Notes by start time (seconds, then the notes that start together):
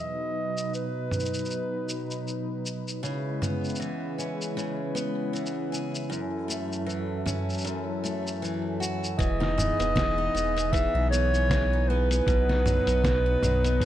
Already playing: B2 F#3 D#4 B4
0.00 D#5
0.57 cabasa
0.74 B4, cabasa
1.11 mid tom, cabasa
1.20 cabasa
1.25 cabasa
1.34 cabasa
1.38 cabasa
1.45 cabasa
1.50 cabasa
1.89 cabasa
2.11 cabasa
2.28 cabasa
2.66 cabasa
2.88 cabasa
3.02 C#3 G#3 E4 B4, cabasa
3.42 B3, mid tom, cabasa
3.64 cabasa
3.69 cabasa
3.75 cabasa
3.80 E3, cabasa
4.18 C#4, cabasa
4.41 cabasa
4.57 C#3, cabasa
4.95 B3, cabasa
5.33 E3, cabasa
5.46 cabasa
5.72 G#4, cabasa
5.95 cabasa
6.10 F#2 F#3 A4, cabasa
6.48 A3, cabasa
6.72 cabasa
6.86 E3, cabasa
7.26 C#4, mid tom, cabasa
7.49 cabasa
7.52 cabasa
7.58 cabasa
7.60 cabasa
7.63 F#2, cabasa
7.66 cabasa
8.04 A3, cabasa
8.27 cabasa
8.42 E3, cabasa
8.80 F#4, cabasa
9.04 cabasa
9.18 E1 E3 B3 G#4 D#5, kick, closed hi-hat, cabasa
9.40 D#4, snare
9.58 B3, mid tom, cabasa
9.79 E1 B3, closed hi-hat, cabasa
9.96 E3, kick, snare, closed hi-hat, cabasa
10.18 D#4
10.34 E1 B3, cabasa
10.56 B3, closed hi-hat, cabasa
10.72 E3 E5, kick, closed hi-hat, cabasa
10.94 B1 D#4
11.11 B3 C#5, cabasa
11.34 B3, cabasa
11.50 E3, kick, snare, closed hi-hat, cabasa
11.73 D#4
11.89 B3 B4
12.11 B3, closed hi-hat, cabasa
12.27 B1 B2 B4 D#5 F#5, kick, closed hi-hat, cabasa
12.49 D#4, snare
12.66 F#3, mid tom, cabasa
12.87 B1 B3, closed hi-hat, cabasa
13.04 B2, kick, snare, closed hi-hat, cabasa
13.26 D#4
13.42 B1 F#3, mid tom, cabasa
13.64 B3, closed hi-hat, cabasa
13.81 B2, kick, closed hi-hat